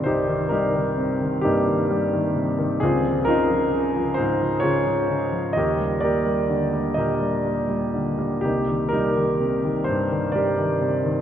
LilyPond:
<<
  \new Staff \with { instrumentName = "Grand piano" } { \time 6/8 \key c \minor \tempo 4. = 43 << { c''8 bes'4 g'4 r8 | aes'8 bes'4 c''8 des''4 | ees''8 d''4 ees''4 r8 | g'8 bes'4 c''8 d''4 | } \\ { <ees' g' bes'>8 <ees' g'>4 <bes ees'>4. | <c' f'>8 <ees' f'>4. <f' aes'>4 | <g' bes'>8 <g' bes'>4 <g' bes'>4. | <bes ees'>8 <ees' g'>4. <g' bes'>4 | } >> }
  \new Staff \with { instrumentName = "Grand piano" } { \clef bass \time 6/8 \key c \minor <c, g, c ees g>16 ees16 g16 ees16 c16 ees16 g,16 ees16 g16 ees16 c16 ees16 | des,16 f16 des16 f16 des16 f16 aes,16 f16 des16 f16 des16 f16 | ees,16 g16 bes16 g16 d16 g16 bes,16 g16 bes16 g16 d16 g16 | c,16 ees16 g16 ees16 c16 ees16 g,16 ees16 g16 ees16 c16 ees16 | }
>>